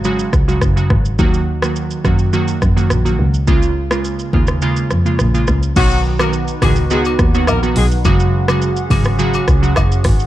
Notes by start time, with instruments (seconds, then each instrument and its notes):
Already playing: double bass G#1
0.04 synth keys C#3 F#3 G#3 F#4, shaker
0.19 shaker
0.33 double bass C#2, kick, cross-stick, shaker
0.48 synth keys C#3 F#3 G#3 F#4, shaker
0.61 double bass F#1, kick, cross-stick, shaker
0.76 synth keys C#3 F#3 G#3 F#4, shaker
0.90 double bass G#1, kick, cross-stick
1.05 shaker
1.19 double bass D#2, synth keys D#3 F#3 A#3 F#4, kick, shaker
1.34 shaker
1.62 synth keys D#3 F#3 A#3 F#4, cross-stick, shaker
1.76 shaker
1.91 shaker
2.04 double bass F#2, synth keys D#3 F#3 A#3 F#4, kick, cross-stick, shaker
2.19 shaker
2.33 synth keys D#3 F#3 A#3 F#4, shaker
2.48 shaker
2.62 double bass F#2, kick, cross-stick, shaker
2.76 synth keys D#3 F#3 A#3 F#4, shaker
2.90 double bass A#1, cross-stick, shaker
3.05 synth keys D#3 F#3 A#3 F#4, shaker
3.19 double bass C#2
3.34 shaker
3.47 double bass C#2, synth keys C#3 G#3 A#3 F4, kick, shaker
3.62 shaker
3.91 synth keys C#3 G#3 A#3 F4, cross-stick, shaker
4.05 shaker
4.19 shaker
4.33 double bass D#2, synth keys C#3 G#3 A#3 F4, kick
4.47 cross-stick, shaker
4.62 synth keys C#3 G#3 A#3 F4, shaker
4.76 shaker
4.91 double bass F2, cross-stick, shaker
5.05 synth keys C#3 G#3 A#3 F4, shaker
5.19 double bass A#1, cross-stick, shaker
5.34 synth keys C#3 G#3 A#3 F4, shaker
5.47 double bass C#2, cross-stick, shaker
5.63 shaker
5.76 double bass B1, synth keys D#3 F#3 B3 F#4, horn section F#3 F#4, analog synth pad D#4 F#4 B4 F#5, kick, crash, high agogo, shaker
5.91 shaker
6.19 synth keys D#3 F#3 B3 F#4, horn section A#3 A#4, cross-stick, high agogo, shaker
6.33 shaker
6.48 shaker
6.62 double bass C#2, synth keys D#3 F#3 B3 F#4, horn section G#3 G#4, kick, cross-stick, mid tom, open hi-hat, high agogo, shaker
6.76 shaker
6.90 synth keys D#3 F#3 B3 F#4, horn section G#3 G#4, shaker
7.05 high agogo, shaker
7.19 double bass D#2, kick, cross-stick, shaker
7.34 synth keys D#3 F#3 B3 F#4, horn section F#3 F#4, shaker
7.47 double bass A#1, horn section A#3 A#4, cross-stick, high agogo, low woodblock, shaker
7.63 synth keys D#3 F#3 B3 F#4, shaker
7.76 double bass B1, horn section G#3 G#4, open hi-hat
7.91 shaker
8.05 double bass F#1, synth keys C#3 F#3 G#3 F#4, analog synth pad C#4 F#4 G#4, kick, high agogo, shaker
8.20 shaker
8.48 synth keys C#3 F#3 G#3 F#4, cross-stick, high agogo, shaker
8.62 shaker
8.76 shaker
8.90 double bass G#1, synth keys C#3 F#3 G#3 F#4, kick, mid tom, open hi-hat, high agogo, shaker
9.04 cross-stick, shaker
9.19 synth keys C#3 F#3 G#3 F#4, shaker
9.34 high agogo, shaker
9.48 double bass C#2, kick, cross-stick, shaker
9.62 synth keys C#3 F#3 G#3 F#4, shaker
9.76 double bass F#1, kick, cross-stick, high agogo, low woodblock, shaker
9.92 shaker
10.04 double bass G#1, kick, cross-stick, open hi-hat
10.20 shaker